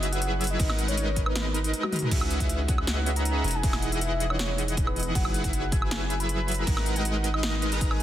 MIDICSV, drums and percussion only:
0, 0, Header, 1, 2, 480
1, 0, Start_track
1, 0, Tempo, 379747
1, 753, Time_signature, 4, 2, 24, 8
1, 10149, End_track
2, 0, Start_track
2, 0, Title_t, "Drums"
2, 34, Note_on_c, 9, 42, 69
2, 159, Note_off_c, 9, 42, 0
2, 159, Note_on_c, 9, 42, 67
2, 274, Note_off_c, 9, 42, 0
2, 274, Note_on_c, 9, 42, 85
2, 400, Note_off_c, 9, 42, 0
2, 514, Note_on_c, 9, 42, 51
2, 555, Note_off_c, 9, 42, 0
2, 555, Note_on_c, 9, 42, 68
2, 593, Note_off_c, 9, 42, 0
2, 593, Note_on_c, 9, 42, 86
2, 720, Note_off_c, 9, 42, 0
2, 753, Note_on_c, 9, 36, 124
2, 753, Note_on_c, 9, 42, 87
2, 753, Note_on_c, 9, 49, 50
2, 879, Note_on_c, 9, 38, 35
2, 879, Note_on_c, 9, 76, 65
2, 880, Note_off_c, 9, 36, 0
2, 880, Note_off_c, 9, 42, 0
2, 880, Note_off_c, 9, 49, 0
2, 993, Note_on_c, 9, 42, 73
2, 1005, Note_off_c, 9, 38, 0
2, 1005, Note_off_c, 9, 76, 0
2, 1117, Note_off_c, 9, 42, 0
2, 1117, Note_on_c, 9, 42, 70
2, 1232, Note_off_c, 9, 42, 0
2, 1232, Note_on_c, 9, 42, 86
2, 1358, Note_off_c, 9, 42, 0
2, 1471, Note_on_c, 9, 42, 71
2, 1474, Note_on_c, 9, 36, 59
2, 1596, Note_on_c, 9, 76, 66
2, 1598, Note_off_c, 9, 42, 0
2, 1600, Note_off_c, 9, 36, 0
2, 1713, Note_on_c, 9, 38, 115
2, 1713, Note_on_c, 9, 42, 82
2, 1722, Note_off_c, 9, 76, 0
2, 1839, Note_off_c, 9, 38, 0
2, 1839, Note_off_c, 9, 42, 0
2, 1952, Note_on_c, 9, 42, 67
2, 2077, Note_off_c, 9, 42, 0
2, 2077, Note_on_c, 9, 42, 69
2, 2193, Note_off_c, 9, 42, 0
2, 2193, Note_on_c, 9, 42, 89
2, 2318, Note_on_c, 9, 48, 52
2, 2318, Note_on_c, 9, 76, 67
2, 2319, Note_off_c, 9, 42, 0
2, 2433, Note_on_c, 9, 42, 52
2, 2433, Note_on_c, 9, 47, 80
2, 2444, Note_off_c, 9, 48, 0
2, 2444, Note_off_c, 9, 76, 0
2, 2475, Note_off_c, 9, 42, 0
2, 2475, Note_on_c, 9, 42, 70
2, 2513, Note_off_c, 9, 42, 0
2, 2513, Note_on_c, 9, 42, 86
2, 2557, Note_on_c, 9, 45, 78
2, 2559, Note_off_c, 9, 47, 0
2, 2639, Note_off_c, 9, 42, 0
2, 2673, Note_on_c, 9, 42, 82
2, 2673, Note_on_c, 9, 49, 79
2, 2674, Note_on_c, 9, 36, 123
2, 2683, Note_off_c, 9, 45, 0
2, 2798, Note_on_c, 9, 76, 63
2, 2799, Note_off_c, 9, 42, 0
2, 2799, Note_off_c, 9, 49, 0
2, 2801, Note_off_c, 9, 36, 0
2, 2914, Note_on_c, 9, 42, 68
2, 2924, Note_off_c, 9, 76, 0
2, 3038, Note_off_c, 9, 42, 0
2, 3038, Note_on_c, 9, 36, 60
2, 3038, Note_on_c, 9, 42, 69
2, 3153, Note_off_c, 9, 42, 0
2, 3153, Note_on_c, 9, 42, 82
2, 3165, Note_off_c, 9, 36, 0
2, 3279, Note_off_c, 9, 42, 0
2, 3393, Note_on_c, 9, 42, 71
2, 3394, Note_on_c, 9, 36, 114
2, 3517, Note_on_c, 9, 76, 65
2, 3519, Note_off_c, 9, 42, 0
2, 3520, Note_off_c, 9, 36, 0
2, 3632, Note_on_c, 9, 38, 124
2, 3632, Note_on_c, 9, 42, 82
2, 3643, Note_off_c, 9, 76, 0
2, 3759, Note_off_c, 9, 38, 0
2, 3759, Note_off_c, 9, 42, 0
2, 3873, Note_on_c, 9, 42, 69
2, 3998, Note_off_c, 9, 42, 0
2, 3998, Note_on_c, 9, 42, 75
2, 4112, Note_off_c, 9, 42, 0
2, 4112, Note_on_c, 9, 42, 83
2, 4238, Note_off_c, 9, 42, 0
2, 4353, Note_on_c, 9, 42, 51
2, 4395, Note_off_c, 9, 42, 0
2, 4395, Note_on_c, 9, 42, 70
2, 4433, Note_off_c, 9, 42, 0
2, 4433, Note_on_c, 9, 42, 85
2, 4559, Note_off_c, 9, 42, 0
2, 4593, Note_on_c, 9, 42, 78
2, 4593, Note_on_c, 9, 49, 46
2, 4594, Note_on_c, 9, 36, 127
2, 4717, Note_on_c, 9, 38, 37
2, 4717, Note_on_c, 9, 76, 59
2, 4720, Note_off_c, 9, 42, 0
2, 4720, Note_off_c, 9, 49, 0
2, 4721, Note_off_c, 9, 36, 0
2, 4834, Note_on_c, 9, 42, 72
2, 4844, Note_off_c, 9, 38, 0
2, 4844, Note_off_c, 9, 76, 0
2, 4958, Note_off_c, 9, 42, 0
2, 4958, Note_on_c, 9, 42, 65
2, 5073, Note_off_c, 9, 42, 0
2, 5073, Note_on_c, 9, 42, 86
2, 5200, Note_off_c, 9, 42, 0
2, 5313, Note_on_c, 9, 42, 72
2, 5438, Note_on_c, 9, 76, 62
2, 5440, Note_off_c, 9, 42, 0
2, 5553, Note_on_c, 9, 38, 127
2, 5553, Note_on_c, 9, 42, 84
2, 5564, Note_off_c, 9, 76, 0
2, 5680, Note_off_c, 9, 38, 0
2, 5680, Note_off_c, 9, 42, 0
2, 5793, Note_on_c, 9, 42, 67
2, 5918, Note_off_c, 9, 42, 0
2, 5918, Note_on_c, 9, 42, 70
2, 6033, Note_off_c, 9, 42, 0
2, 6033, Note_on_c, 9, 42, 81
2, 6034, Note_on_c, 9, 36, 111
2, 6158, Note_on_c, 9, 76, 61
2, 6159, Note_off_c, 9, 42, 0
2, 6160, Note_off_c, 9, 36, 0
2, 6273, Note_on_c, 9, 42, 50
2, 6285, Note_off_c, 9, 76, 0
2, 6314, Note_off_c, 9, 42, 0
2, 6314, Note_on_c, 9, 42, 64
2, 6353, Note_off_c, 9, 42, 0
2, 6353, Note_on_c, 9, 42, 85
2, 6480, Note_off_c, 9, 42, 0
2, 6513, Note_on_c, 9, 36, 127
2, 6513, Note_on_c, 9, 42, 75
2, 6513, Note_on_c, 9, 49, 46
2, 6636, Note_on_c, 9, 76, 60
2, 6640, Note_off_c, 9, 36, 0
2, 6640, Note_off_c, 9, 42, 0
2, 6640, Note_off_c, 9, 49, 0
2, 6752, Note_on_c, 9, 42, 65
2, 6763, Note_off_c, 9, 76, 0
2, 6878, Note_off_c, 9, 42, 0
2, 6878, Note_on_c, 9, 36, 66
2, 6878, Note_on_c, 9, 42, 62
2, 6992, Note_off_c, 9, 42, 0
2, 6992, Note_on_c, 9, 42, 80
2, 7004, Note_off_c, 9, 36, 0
2, 7119, Note_off_c, 9, 42, 0
2, 7232, Note_on_c, 9, 42, 71
2, 7233, Note_on_c, 9, 36, 120
2, 7357, Note_on_c, 9, 76, 62
2, 7358, Note_off_c, 9, 42, 0
2, 7359, Note_off_c, 9, 36, 0
2, 7473, Note_on_c, 9, 38, 127
2, 7473, Note_on_c, 9, 42, 79
2, 7484, Note_off_c, 9, 76, 0
2, 7599, Note_off_c, 9, 38, 0
2, 7599, Note_off_c, 9, 42, 0
2, 7712, Note_on_c, 9, 42, 64
2, 7838, Note_off_c, 9, 42, 0
2, 7838, Note_on_c, 9, 42, 66
2, 7952, Note_off_c, 9, 42, 0
2, 7952, Note_on_c, 9, 42, 79
2, 8078, Note_off_c, 9, 42, 0
2, 8192, Note_on_c, 9, 42, 49
2, 8234, Note_off_c, 9, 42, 0
2, 8234, Note_on_c, 9, 42, 67
2, 8272, Note_off_c, 9, 42, 0
2, 8272, Note_on_c, 9, 42, 80
2, 8398, Note_off_c, 9, 42, 0
2, 8432, Note_on_c, 9, 42, 78
2, 8432, Note_on_c, 9, 49, 49
2, 8433, Note_on_c, 9, 36, 127
2, 8557, Note_on_c, 9, 38, 37
2, 8557, Note_on_c, 9, 76, 59
2, 8559, Note_off_c, 9, 42, 0
2, 8559, Note_off_c, 9, 49, 0
2, 8560, Note_off_c, 9, 36, 0
2, 8672, Note_on_c, 9, 42, 66
2, 8683, Note_off_c, 9, 38, 0
2, 8683, Note_off_c, 9, 76, 0
2, 8797, Note_off_c, 9, 42, 0
2, 8797, Note_on_c, 9, 42, 61
2, 8913, Note_off_c, 9, 42, 0
2, 8913, Note_on_c, 9, 42, 79
2, 9039, Note_off_c, 9, 42, 0
2, 9152, Note_on_c, 9, 42, 65
2, 9278, Note_on_c, 9, 76, 64
2, 9279, Note_off_c, 9, 42, 0
2, 9393, Note_on_c, 9, 38, 127
2, 9393, Note_on_c, 9, 42, 76
2, 9404, Note_off_c, 9, 76, 0
2, 9519, Note_off_c, 9, 38, 0
2, 9519, Note_off_c, 9, 42, 0
2, 9633, Note_on_c, 9, 42, 63
2, 9757, Note_off_c, 9, 42, 0
2, 9757, Note_on_c, 9, 42, 67
2, 9873, Note_off_c, 9, 42, 0
2, 9873, Note_on_c, 9, 36, 106
2, 9873, Note_on_c, 9, 42, 76
2, 9997, Note_on_c, 9, 76, 61
2, 9999, Note_off_c, 9, 42, 0
2, 10000, Note_off_c, 9, 36, 0
2, 10124, Note_off_c, 9, 76, 0
2, 10149, End_track
0, 0, End_of_file